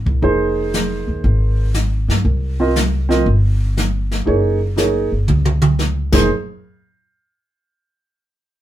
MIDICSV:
0, 0, Header, 1, 4, 480
1, 0, Start_track
1, 0, Key_signature, -4, "minor"
1, 0, Tempo, 505476
1, 214, Time_signature, 4, 2, 24, 8
1, 8179, End_track
2, 0, Start_track
2, 0, Title_t, "Grand piano"
2, 0, Program_c, 0, 0
2, 211, Note_on_c, 0, 58, 51
2, 216, Note_on_c, 0, 63, 49
2, 220, Note_on_c, 0, 68, 51
2, 226, Note_on_c, 0, 72, 58
2, 1562, Note_off_c, 0, 58, 0
2, 1564, Note_off_c, 0, 63, 0
2, 1566, Note_off_c, 0, 68, 0
2, 1569, Note_off_c, 0, 72, 0
2, 2466, Note_on_c, 0, 60, 63
2, 2470, Note_on_c, 0, 65, 57
2, 2479, Note_on_c, 0, 70, 57
2, 2480, Note_on_c, 0, 75, 68
2, 2602, Note_off_c, 0, 60, 0
2, 2604, Note_off_c, 0, 65, 0
2, 2608, Note_off_c, 0, 70, 0
2, 2609, Note_off_c, 0, 75, 0
2, 2932, Note_on_c, 0, 60, 67
2, 2939, Note_on_c, 0, 65, 54
2, 2945, Note_on_c, 0, 70, 55
2, 2947, Note_on_c, 0, 75, 72
2, 3075, Note_off_c, 0, 60, 0
2, 3079, Note_off_c, 0, 65, 0
2, 3082, Note_off_c, 0, 70, 0
2, 3083, Note_off_c, 0, 75, 0
2, 4040, Note_on_c, 0, 58, 57
2, 4048, Note_on_c, 0, 63, 51
2, 4057, Note_on_c, 0, 68, 49
2, 4062, Note_on_c, 0, 73, 66
2, 4343, Note_off_c, 0, 58, 0
2, 4347, Note_off_c, 0, 63, 0
2, 4351, Note_off_c, 0, 68, 0
2, 4353, Note_off_c, 0, 73, 0
2, 4524, Note_on_c, 0, 58, 53
2, 4531, Note_on_c, 0, 63, 48
2, 4539, Note_on_c, 0, 68, 45
2, 4546, Note_on_c, 0, 73, 60
2, 4824, Note_off_c, 0, 58, 0
2, 4828, Note_off_c, 0, 63, 0
2, 4832, Note_off_c, 0, 68, 0
2, 4836, Note_off_c, 0, 73, 0
2, 5820, Note_on_c, 0, 58, 68
2, 5823, Note_on_c, 0, 63, 63
2, 5828, Note_on_c, 0, 68, 56
2, 5833, Note_on_c, 0, 72, 69
2, 5960, Note_off_c, 0, 58, 0
2, 5961, Note_off_c, 0, 63, 0
2, 5963, Note_off_c, 0, 68, 0
2, 5966, Note_off_c, 0, 72, 0
2, 8179, End_track
3, 0, Start_track
3, 0, Title_t, "Upright bass"
3, 0, Program_c, 1, 32
3, 57, Note_on_c, 1, 36, 74
3, 201, Note_off_c, 1, 36, 0
3, 211, Note_on_c, 1, 29, 84
3, 982, Note_off_c, 1, 29, 0
3, 1022, Note_on_c, 1, 39, 60
3, 1164, Note_off_c, 1, 39, 0
3, 1178, Note_on_c, 1, 32, 86
3, 1946, Note_off_c, 1, 32, 0
3, 1979, Note_on_c, 1, 43, 70
3, 2123, Note_off_c, 1, 43, 0
3, 2132, Note_on_c, 1, 36, 85
3, 3056, Note_off_c, 1, 36, 0
3, 3095, Note_on_c, 1, 31, 85
3, 4018, Note_off_c, 1, 31, 0
3, 4056, Note_on_c, 1, 30, 78
3, 4825, Note_off_c, 1, 30, 0
3, 4863, Note_on_c, 1, 31, 56
3, 5005, Note_off_c, 1, 31, 0
3, 5027, Note_on_c, 1, 37, 90
3, 5791, Note_off_c, 1, 37, 0
3, 5823, Note_on_c, 1, 29, 89
3, 5965, Note_off_c, 1, 29, 0
3, 8179, End_track
4, 0, Start_track
4, 0, Title_t, "Drums"
4, 62, Note_on_c, 9, 36, 66
4, 157, Note_off_c, 9, 36, 0
4, 216, Note_on_c, 9, 36, 34
4, 224, Note_on_c, 9, 25, 44
4, 311, Note_off_c, 9, 36, 0
4, 700, Note_on_c, 9, 44, 52
4, 704, Note_on_c, 9, 38, 58
4, 795, Note_off_c, 9, 44, 0
4, 799, Note_off_c, 9, 38, 0
4, 1178, Note_on_c, 9, 36, 33
4, 1183, Note_off_c, 9, 25, 0
4, 1183, Note_on_c, 9, 25, 46
4, 1273, Note_off_c, 9, 36, 0
4, 1653, Note_on_c, 9, 44, 54
4, 1657, Note_on_c, 9, 38, 52
4, 1748, Note_off_c, 9, 44, 0
4, 1752, Note_off_c, 9, 38, 0
4, 1990, Note_on_c, 9, 38, 39
4, 2085, Note_off_c, 9, 38, 0
4, 2139, Note_on_c, 9, 36, 34
4, 2143, Note_off_c, 9, 25, 0
4, 2143, Note_on_c, 9, 25, 47
4, 2234, Note_off_c, 9, 36, 0
4, 2619, Note_on_c, 9, 44, 55
4, 2623, Note_on_c, 9, 38, 60
4, 2714, Note_off_c, 9, 44, 0
4, 2718, Note_off_c, 9, 38, 0
4, 2950, Note_on_c, 9, 38, 35
4, 3045, Note_off_c, 9, 38, 0
4, 3100, Note_on_c, 9, 36, 35
4, 3104, Note_off_c, 9, 25, 0
4, 3104, Note_on_c, 9, 25, 52
4, 3195, Note_off_c, 9, 36, 0
4, 3580, Note_on_c, 9, 44, 48
4, 3584, Note_on_c, 9, 38, 50
4, 3675, Note_off_c, 9, 44, 0
4, 3679, Note_off_c, 9, 38, 0
4, 3908, Note_on_c, 9, 38, 41
4, 4002, Note_off_c, 9, 38, 0
4, 4057, Note_on_c, 9, 36, 35
4, 4059, Note_off_c, 9, 25, 0
4, 4059, Note_on_c, 9, 25, 54
4, 4152, Note_off_c, 9, 36, 0
4, 4535, Note_on_c, 9, 44, 54
4, 4538, Note_on_c, 9, 38, 56
4, 4629, Note_off_c, 9, 44, 0
4, 4633, Note_off_c, 9, 38, 0
4, 5013, Note_on_c, 9, 47, 46
4, 5108, Note_off_c, 9, 47, 0
4, 5178, Note_on_c, 9, 47, 55
4, 5273, Note_off_c, 9, 47, 0
4, 5333, Note_on_c, 9, 47, 72
4, 5406, Note_off_c, 9, 25, 0
4, 5428, Note_off_c, 9, 47, 0
4, 5495, Note_on_c, 9, 44, 44
4, 5499, Note_on_c, 9, 38, 47
4, 5590, Note_off_c, 9, 44, 0
4, 5594, Note_off_c, 9, 38, 0
4, 5815, Note_on_c, 9, 38, 81
4, 5815, Note_on_c, 9, 49, 84
4, 5822, Note_on_c, 9, 36, 83
4, 5910, Note_off_c, 9, 38, 0
4, 5910, Note_off_c, 9, 49, 0
4, 5917, Note_off_c, 9, 36, 0
4, 8179, End_track
0, 0, End_of_file